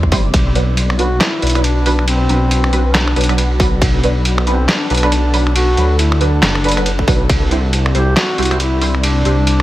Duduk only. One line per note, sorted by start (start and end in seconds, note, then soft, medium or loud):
0.99 1.22 F#4 loud
1.21 1.66 E4 loud
1.64 2.07 D4 loud
2.08 2.96 C4 loud
2.95 3.60 D4 medium
4.47 4.70 C4 medium
4.69 5.55 D4 loud
5.55 5.96 F#4 loud
5.99 6.22 E4 loud
6.21 7.08 D4 loud
7.95 8.15 G4 loud
8.16 8.57 F#4 loud
8.60 8.98 E4 loud
8.98 9.05 E4 medium
9.04 9.62 D4 loud